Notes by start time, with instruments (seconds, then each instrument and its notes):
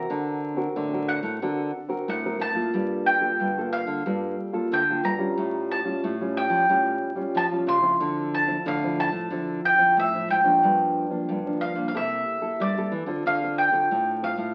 Already playing: nylon-string guitar C4 F#4 A#4, mandolin A#5
0.10 nylon-string guitar D3
0.57 nylon-string guitar C4 F#4 A#4
0.76 nylon-string guitar A2 D3
0.93 nylon-string guitar C4 F#4 A#4
1.09 mandolin F#5
1.23 nylon-string guitar A2
1.42 nylon-string guitar D3 C4 F#4 A#4
1.89 nylon-string guitar C4 F#4 A#4
2.08 nylon-string guitar A2, mandolin F#5
2.25 nylon-string guitar C4 F#4 A#4
2.40 nylon-string guitar A2, mandolin A5
2.55 nylon-string guitar A#3 F4 A4
2.74 nylon-string guitar G2 G3
3.06 mandolin G5
3.21 nylon-string guitar A#3 F4 A4
3.40 nylon-string guitar G2 D3
3.57 nylon-string guitar A#3 F4 A4
3.73 mandolin F5
3.87 nylon-string guitar D3
4.06 nylon-string guitar G2 G3 A#3 F4 A4
4.53 nylon-string guitar A#3 F4 A4
4.72 nylon-string guitar D3, mandolin G5
4.90 nylon-string guitar A#3 F4 A4
5.04 nylon-string guitar G2, mandolin A#5
5.18 nylon-string guitar G3 C#4 F4
5.38 nylon-string guitar A2
5.71 mandolin A5
5.84 nylon-string guitar G3 C#4 F4
6.03 nylon-string guitar A2
6.21 nylon-string guitar G3 C#4 F4
6.37 mandolin G5
6.50 nylon-string guitar F3
6.69 nylon-string guitar A2 G3 C#4 F4
7.16 nylon-string guitar G3 C#4 F4
7.35 nylon-string guitar A2 F3, mandolin A5
7.52 nylon-string guitar G3 C#4 F4
7.67 nylon-string guitar C#3, mandolin C6
7.81 nylon-string guitar F3 C4 E4
8.00 nylon-string guitar D3
8.34 mandolin A5
8.47 nylon-string guitar F3 C4 E4
8.66 nylon-string guitar A2 D3, mandolin F5
8.84 nylon-string guitar F3 C4 E4
9.00 mandolin A5
9.12 nylon-string guitar A2
9.30 nylon-string guitar D3 F3 C4 E4
9.65 mandolin G5
9.78 nylon-string guitar F3 C4 E4
9.97 nylon-string guitar A2, mandolin E5
10.14 nylon-string guitar F3 C4 E4
10.28 nylon-string guitar G#2, mandolin G5
10.44 nylon-string guitar F3 A#3 D4
10.63 nylon-string guitar G2
11.10 nylon-string guitar F3 A#3 D4
11.28 nylon-string guitar G2 D3
11.46 nylon-string guitar F3 A#3 D4
11.61 mandolin F5
11.75 nylon-string guitar A#2
11.88 mandolin F5
11.94 nylon-string guitar C3 A#3 E4 A4, mandolin E5
12.41 nylon-string guitar A#3 E4 A4
12.60 nylon-string guitar G2 G3, mandolin D5
12.77 nylon-string guitar G3 A#3 E4 A4
12.92 nylon-string guitar E3
13.06 nylon-string guitar D3 C4 F4 A4
13.26 nylon-string guitar D3, mandolin F5
13.44 nylon-string guitar C4 F4 A4
13.58 mandolin G5
13.72 nylon-string guitar D3 C4 F4 A4
13.91 nylon-string guitar A2
14.23 nylon-string guitar C4 F4 A4, mandolin F5
14.37 nylon-string guitar A2